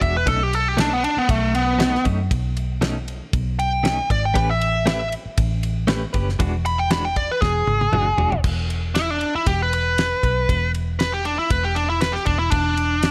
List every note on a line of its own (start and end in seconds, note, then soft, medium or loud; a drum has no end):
0.00 0.23 E1 medium
0.00 0.18 G#3 soft
0.00 0.17 D4 soft
0.00 0.16 F#4 medium
0.00 0.15 E5 loud
0.00 kick medium
0.00 ride medium
0.17 0.28 B4 medium
0.26 1.06 B1 medium
0.26 0.42 B2 medium
0.26 0.43 A3 medium
0.26 0.43 C#4 medium
0.26 0.43 D#4 medium
0.26 0.43 A4 medium
0.26 kick loud
0.26 ride medium
0.43 0.55 G4 medium
0.53 0.68 A4 medium
0.53 ride medium
0.68 0.78 G4 medium
0.77 0.93 B2 medium
0.77 0.94 A3 medium
0.77 0.94 C#4 medium
0.77 0.93 D4 medium
0.77 0.94 D#4 medium
0.77 snare loud
0.77 ride medium
0.93 1.03 B3 medium
1.04 1.17 D4 medium
1.04 ride medium
1.17 1.30 B3 medium
1.17 muted fingered electric bass stroke soft
1.29 1.96 B1 loud
1.29 1.54 A3 medium
1.29 kick loud
1.29 ride medium
1.55 2.04 B3 loud
1.55 ride medium
1.78 1.95 B2 medium
1.78 1.96 A3 medium
1.78 1.96 C#4 medium
1.78 1.96 D#4 medium
1.78 snare loud
1.78 ride medium
1.95 snare soft
2.04 2.27 F#2 medium
2.04 2.22 A3 soft
2.04 2.21 C#4 soft
2.04 2.21 D#4 soft
2.04 kick medium
2.04 ride medium
2.31 3.20 B1 loud
2.31 kick loud
2.31 ride medium
2.57 ride medium
2.81 2.98 B2 medium
2.81 2.98 A3 medium
2.81 2.98 C#4 medium
2.81 2.99 D#4 medium
2.81 snare loud
2.81 ride medium
3.08 ride medium
3.33 4.00 B1 loud
3.33 kick loud
3.33 ride medium
3.59 4.08 G5 loud
3.59 ride medium
3.83 4.00 B2 medium
3.83 4.00 A3 medium
3.83 4.01 C#4 medium
3.83 4.01 D#4 medium
3.83 snare loud
3.83 ride medium
4.10 4.32 G#1 medium
4.10 4.24 D5 loud
4.10 kick medium
4.10 ride medium
4.25 4.49 G5 medium
4.34 5.14 A1 medium
4.34 4.51 A3 medium
4.34 4.51 C#4 medium
4.34 4.51 G4 medium
4.34 4.52 B4 medium
4.34 kick loud
4.34 ride medium
4.51 4.86 E5 medium
4.61 ride medium
4.86 5.02 A3 medium
4.86 5.02 C#4 medium
4.86 5.03 G4 medium
4.86 5.03 B4 medium
4.86 5.11 E5 loud
4.86 snare loud
4.86 ride medium
5.12 ride medium
5.25 muted fingered electric bass stroke soft
5.38 6.04 A1 loud
5.38 kick loud
5.38 ride loud
5.63 ride medium
5.87 6.04 A3 medium
5.87 6.04 C#4 medium
5.87 6.05 G4 medium
5.87 6.05 B4 medium
5.87 snare loud
5.87 ride medium
6.13 6.36 F#1 medium
6.13 6.31 C#4 soft
6.13 6.30 G4 medium
6.13 6.29 B4 medium
6.13 kick medium
6.13 ride medium
6.29 snare soft
6.39 7.29 E1 loud
6.39 6.55 E3 medium
6.39 6.56 G#3 medium
6.39 6.56 D4 medium
6.39 6.56 F#4 loud
6.39 kick loud
6.39 ride medium
6.66 6.79 B5 loud
6.66 ride medium
6.79 6.90 G5 medium
6.91 7.07 E3 medium
6.91 7.07 G#3 medium
6.91 7.07 D4 medium
6.91 7.08 F#4 medium
6.91 7.04 B5 medium
6.91 snare loud
6.91 ride medium
7.05 7.16 G5 medium
7.16 7.30 D5 loud
7.16 kick medium
7.16 ride medium
7.32 7.41 B4 medium
7.41 7.64 E1 loud
7.41 8.40 G#4 loud
7.41 kick loud
7.41 snare medium
7.67 7.90 G#1 medium
7.67 high tom medium
7.81 high tom medium
7.92 8.15 F#1 medium
7.92 8.09 E3 medium
7.92 8.09 G#3 medium
7.92 8.09 D4 medium
7.92 8.10 F#4 medium
7.92 mid tom medium
8.17 8.41 E1 medium
8.17 8.35 G#3 soft
8.17 8.35 D4 medium
8.17 8.34 F#4 medium
8.17 floor tom loud
8.32 floor tom medium
8.44 9.23 E1 loud
8.44 kick loud
8.44 crash loud
8.70 ride medium
8.95 9.10 E4 medium
8.95 snare loud
8.95 ride medium
9.10 9.34 D4 medium
9.21 ride medium
9.35 9.46 E4 medium
9.35 muted fingered electric bass stroke soft
9.46 10.13 E1 loud
9.46 9.60 G4 medium
9.46 kick loud
9.46 ride medium
9.62 9.72 B4 medium
9.73 10.71 B4 medium
9.73 ride medium
9.98 snare loud
9.98 ride medium
10.23 10.45 B1 medium
10.23 kick medium
10.23 ride medium
10.49 11.37 E1 loud
10.49 kick loud
10.49 ride medium
10.75 ride medium
10.99 11.12 B4 medium
10.99 snare loud
10.99 ride medium
11.13 11.24 G4 medium
11.25 11.38 D4 medium
11.25 ride medium
11.39 11.50 E4 medium
11.50 12.17 E1 loud
11.50 11.64 B4 medium
11.50 kick loud
11.50 ride medium
11.64 11.75 G4 medium
11.75 11.89 D4 medium
11.75 ride medium
11.89 12.00 E4 medium
12.01 12.14 B4 medium
12.01 snare loud
12.01 ride medium
12.13 12.25 G4 medium
12.13 snare soft
12.25 12.49 E1 medium
12.25 12.39 D4 medium
12.25 kick medium
12.25 ride medium
12.39 12.50 E4 medium
12.50 13.11 E1 loud
12.50 13.11 D4 loud
12.50 kick loud
12.50 ride medium
12.77 ride medium
13.03 snare loud
13.03 ride medium